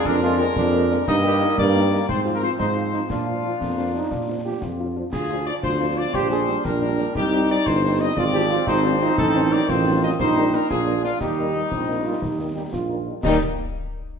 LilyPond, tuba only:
\new Staff \with { instrumentName = "Tuba" } { \clef bass \time 6/8 \key ees \major \tempo 4. = 118 f,4. f,4. | g,4. g,4. | aes,4. aes,4. | bes,4. f,4. |
bes,4. f,4. | d,4. d,4. | bes,,4. bes,,4. | c,4. g,,4. |
aes,,4. aes,,4. | a,,4. a,,4. | bes,,4. bes,,4. | ees,4. bes,,4. |
ees,4. bes,,4. | ees,8 r2 r8 | }